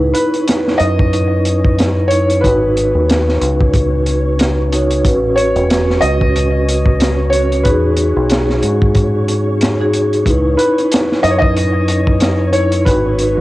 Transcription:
Already playing: C#2 C#4 D#4 E4 B4 C#5
0.14 B4, closed hi-hat
0.34 closed hi-hat
0.48 snare, closed hi-hat
0.68 snare
0.78 F#2 D#5, closed hi-hat
0.99 kick
1.13 closed hi-hat
1.45 closed hi-hat
1.65 kick
1.79 snare, closed hi-hat
2.08 D#4 C#5, closed hi-hat
2.12 E4 C#5
2.30 closed hi-hat
2.41 G#1 D#4 F#4 B4, kick, closed hi-hat
2.46 B4
2.77 closed hi-hat
2.95 D#2
3.10 snare, closed hi-hat
3.29 snare
3.41 C#2, closed hi-hat
3.61 kick
3.74 kick, closed hi-hat
4.06 closed hi-hat
4.39 snare, closed hi-hat
4.72 D#4 F#4 C#5, closed hi-hat
4.90 closed hi-hat
5.04 A1 C#4 F#4 B4, kick, closed hi-hat
5.36 C#5, closed hi-hat
5.56 E1, closed hi-hat
5.70 snare, closed hi-hat
5.90 snare
6.01 C#2 D#5, closed hi-hat
6.21 kick
6.36 closed hi-hat
6.69 closed hi-hat
6.86 kick
7.00 snare, closed hi-hat
7.30 C#4 F#4 C#5, closed hi-hat
7.34 C#5
7.52 closed hi-hat
7.63 E2 D#4 F#4 G#4 B4, kick, closed hi-hat
7.96 closed hi-hat
8.16 B1
8.30 snare, closed hi-hat
8.50 snare
8.63 G#2, closed hi-hat
8.82 kick
8.95 kick, closed hi-hat
9.28 closed hi-hat
9.61 snare, closed hi-hat
9.80 D#4 F#4 G#4
9.93 closed hi-hat
10.13 closed hi-hat
10.26 C#2 D#4 E4 B4, kick, closed hi-hat
10.57 B4, closed hi-hat
10.78 closed hi-hat
10.92 snare, closed hi-hat
11.12 snare
11.23 F#2 D#5, closed hi-hat
11.31 C#5
11.39 D#5, kick
11.57 closed hi-hat
11.88 closed hi-hat
12.07 kick
12.20 snare, closed hi-hat
12.52 D#4 E4 C#5, closed hi-hat
12.72 closed hi-hat
12.85 G#1 D#4 F#4 B4, kick, closed hi-hat
13.19 closed hi-hat

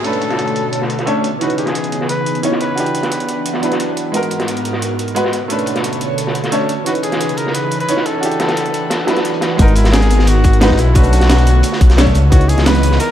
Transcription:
Already playing: B2 D3 A3 F#4 C#5, downlifter
0.02 A3 C#4 D4 A4, closed hi-hat
0.07 B4
0.13 closed hi-hat
0.21 closed hi-hat
0.30 snare, closed hi-hat
0.39 closed hi-hat
0.48 closed hi-hat
0.56 closed hi-hat
0.73 closed hi-hat
0.82 snare
0.90 closed hi-hat
0.99 snare, closed hi-hat
1.06 A3 C#4 D4 C#5, closed hi-hat
1.15 closed hi-hat
1.24 C#3 E3 B3 D#4 G#4, closed hi-hat
1.39 E3 C#4 D#4 F#4, closed hi-hat
1.43 B4
1.50 closed hi-hat
1.58 G#4, closed hi-hat
1.66 snare, closed hi-hat
1.74 closed hi-hat
1.84 closed hi-hat
1.92 closed hi-hat
2.01 snare
2.09 B4, closed hi-hat
2.26 closed hi-hat
2.35 closed hi-hat
2.42 E3 C#4 D#4 C#5, closed hi-hat
2.52 snare
2.60 B4, closed hi-hat
2.75 E3 D4 E4 F#4 F#5, closed hi-hat
2.80 G4
2.86 closed hi-hat
2.95 closed hi-hat
3.03 snare, closed hi-hat
3.12 closed hi-hat
3.20 closed hi-hat
3.28 closed hi-hat
3.46 closed hi-hat
3.54 snare
3.61 F#3 D4 E4, closed hi-hat
3.65 B4
3.72 snare, closed hi-hat
3.80 closed hi-hat
3.89 closed hi-hat
3.97 closed hi-hat
4.12 G#2 G#3 B3 D#4 F#4 A#4, closed hi-hat
4.16 A#4
4.23 closed hi-hat
4.31 closed hi-hat
4.40 snare, closed hi-hat
4.48 closed hi-hat
4.57 closed hi-hat
4.65 closed hi-hat
4.73 snare
4.82 closed hi-hat
4.99 closed hi-hat
5.08 closed hi-hat
5.15 G#3 B3 F#4 B4, closed hi-hat
5.25 snare
5.33 B2 D3 A4 C#5, closed hi-hat
5.48 A3 C#4 D4, closed hi-hat
5.52 B4
5.59 closed hi-hat
5.66 closed hi-hat
5.76 snare, closed hi-hat
5.84 closed hi-hat
5.93 closed hi-hat
6.01 closed hi-hat
6.18 closed hi-hat
6.27 snare
6.35 closed hi-hat
6.44 snare, closed hi-hat
6.51 A3 C#4 D4 C#5, closed hi-hat
6.61 closed hi-hat
6.69 C#3 E3 D#4 G#4 B4, closed hi-hat
6.84 E3 C#4 D#4 F#4, closed hi-hat
6.89 B4
6.95 closed hi-hat
7.03 G#4, closed hi-hat
7.12 snare, closed hi-hat
7.21 closed hi-hat
7.29 closed hi-hat
7.37 A#4, closed hi-hat
7.47 snare
7.54 B4, closed hi-hat
7.71 closed hi-hat
7.80 B4, closed hi-hat
7.88 E3 C#4 D#4 C#5, closed hi-hat
7.97 snare
8.06 A4, closed hi-hat
8.21 E3 D4 E4 F#4 F#5, closed hi-hat
8.25 G4
8.31 closed hi-hat
8.40 snare, closed hi-hat
8.48 snare, closed hi-hat
8.57 closed hi-hat
8.66 closed hi-hat
8.74 closed hi-hat
8.90 snare, closed hi-hat
8.99 closed hi-hat
9.06 F#3 D4 E4, snare, closed hi-hat
9.10 B4
9.16 snare, closed hi-hat
9.25 closed hi-hat
9.34 closed hi-hat
9.41 snare, closed hi-hat
9.57 G#1 G#3 B3 D#4 F#4 A#4, kick, closed hi-hat
9.62 A#4
9.68 closed hi-hat
9.76 E4, closed hi-hat
9.85 snare, closed hi-hat
9.93 G#4, snare, closed hi-hat
10.02 closed hi-hat
10.11 closed hi-hat
10.19 snare
10.27 F#4, closed hi-hat
10.44 kick, closed hi-hat
10.53 closed hi-hat
10.60 G#3 B3 D#4 F#4 B4, snare, closed hi-hat
10.70 kick, snare
10.78 B1 D3 A3 E4 C#5, closed hi-hat
10.93 A3 C#4 D4 F#4, kick, closed hi-hat
10.98 B4
11.03 closed hi-hat
11.13 closed hi-hat
11.21 B1, snare, closed hi-hat
11.30 snare, closed hi-hat
11.38 closed hi-hat
11.47 closed hi-hat
11.63 closed hi-hat
11.73 snare
11.81 B1, kick, closed hi-hat
11.90 snare, closed hi-hat
11.97 A3 C#4 D4 C#5, snare, closed hi-hat
12.06 kick, closed hi-hat
12.15 C#2 E3 G#3 B3 D#5, closed hi-hat
12.30 B3 D#4 E4 F#4, kick, closed hi-hat
12.34 C#5
12.41 closed hi-hat
12.49 G#4, closed hi-hat
12.58 C#2, snare, closed hi-hat
12.66 B4, snare, closed hi-hat
12.75 closed hi-hat
12.83 closed hi-hat
12.92 snare
13.00 A#4, closed hi-hat

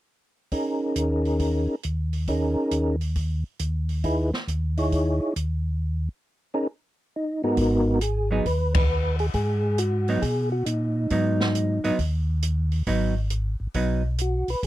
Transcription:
0.52 C#4 D#4 G#4 A#4, kick, open hi-hat
0.96 D#2, closed hi-hat
1.25 open hi-hat
1.39 kick, open hi-hat
1.83 D#2, closed hi-hat
2.13 open hi-hat
2.27 C#4 D#4 G#4 A#4, kick, open hi-hat
2.71 D#2, closed hi-hat
3.01 open hi-hat
3.15 kick, open hi-hat
3.59 D#2, closed hi-hat
3.89 open hi-hat
4.04 D#4 E4 G#4 B4, kick, open hi-hat
4.34 snare
4.47 D#2, closed hi-hat
4.77 D#4 E4 G#4 C#5, open hi-hat
4.92 kick, open hi-hat
5.36 D#2, closed hi-hat
6.54 C#4 D#4 G#4 A#4
7.16 D#4
7.43 G#2 B3 D#4 F#4 G#4 A#4
7.57 G#1 F#4, kick, open hi-hat
7.89 F#4
8.01 G#4, closed hi-hat
8.31 F#3 B3 D#4 G#4
8.46 D#2 B4, kick, open hi-hat
8.74 B4, kick, ride
9.19 G#4, open hi-hat
9.34 G#2 G#4, kick, open hi-hat
9.78 F#4, closed hi-hat
10.08 F#3 B3 D#4, open hi-hat
10.22 B2 G#4, kick, open hi-hat
10.52 F#4
10.66 A#2 D#4, closed hi-hat
11.10 G#2 F#3 B3 D#4, kick, open hi-hat
11.40 snare
11.55 closed hi-hat
11.84 G#2 F#3 B3 D#4, open hi-hat
11.99 D#2, kick, open hi-hat
12.42 closed hi-hat
12.72 open hi-hat
12.87 G#1 F#3 B3 D#4, kick, open hi-hat
13.30 closed hi-hat
13.60 G#1
13.74 B1 F#3 B3 D#4, kick, open hi-hat
14.18 F#4, closed hi-hat
14.48 B1 B4, open hi-hat
14.63 C#2, kick, open hi-hat

